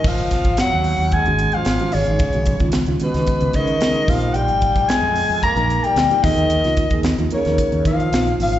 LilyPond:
<<
  \new Staff \with { instrumentName = "Soprano saxophone" } { \time 4/4 \key ees \dorian \tempo 4 = 112 f''4 ges''4 aes''8. f''8. des''8~ | des''4 r8 ces''4 ees''4 f''8 | g''4 aes''4 bes''8. g''8. ees''8~ | ees''4 r8 des''4 f''4 f''8 | }
  \new Staff \with { instrumentName = "Reed electric piano" } { \time 4/4 \key ees \dorian r2 r16 <ees aes des' ges'>8. r16 <ees aes des' ges'>16 r16 <ees aes des' ees'>16 | r16 <ees aes des' ges'>16 r16 <ees aes des' f'>16 r16 <ees aes des' f'>16 <ees aes des' ges'>16 <ees aes des' ges'>4 r16 <ees aes des' aes'>8 <f bes ees' g'>8~ | <f bes ees' g'>4 r4 r16 <f bes ees' bes'>8. r16 <f bes ees' g'>16 <f bes ees' aes'>8 | r16 <f bes ees' f'>16 r16 <f bes ees' aes'>16 r16 <f bes ees' f'>16 <f bes ees' bes'>16 <f bes ees' bes'>4 r16 <f bes ees' f'>4 | }
  \new Staff \with { instrumentName = "Tenor saxophone" } { \clef bass \time 4/4 \key ees \dorian f4 ges4 aes8. f8. des8~ | des4 r8 ces4 ees4 f8 | g4 aes4 bes8. g8. ees8~ | ees4 r8 des4 f4 f8 | }
  \new Staff \with { instrumentName = "Fretless electric bass" } { \clef bass \time 4/4 \key ees \dorian aes,,16 ges,,8 aes,,16 r16 ees,8 ees,8 aes,,8 r16 aes,,16 r16 aes,,16 aes,,16 | des,16 ces,8 des,8 des,16 r16 des,16 r16 des,16 des8 r8 bes,,8 | bes,,16 aes,,8 bes,,16 r16 f,8 f,8 bes,,8 r16 d,16 r16 ees,16 ees,16 | ees,16 des,8 ees,8 ees,16 r16 ees,16 r16 ees,16 ees8 bes,,8 aes,,8 | }
  \new DrumStaff \with { instrumentName = "Drums" } \drummode { \time 4/4 <cymc bd>16 hh16 <hh bd sn>16 <hh bd>16 <hh sn>8 hho8 <hh bd>16 hh16 hh16 hh16 <hh sn>16 hh16 hho16 hh16 | <hh bd>16 hh16 <hh bd>16 <hh bd>16 <hh sn>16 hh16 hh16 <hh sn>16 <hh bd>16 hh16 <hh bd>16 hh16 <hh sn>16 hh16 <hho bd sn>16 hh16 | hh16 hh16 <hh bd>16 <hh bd>16 <hh sn>8 hho8 <hh bd>16 hh16 hh16 hh16 <hh sn>16 hh16 <hho bd sn>16 hh16 | hh16 <hh sn>16 <hh bd>16 <hh bd>16 <hh sn>16 hh16 hh16 <hh sn>16 <hh bd>16 hh16 <hh bd>16 hh16 <hh sn>16 hh16 hho16 hh16 | }
>>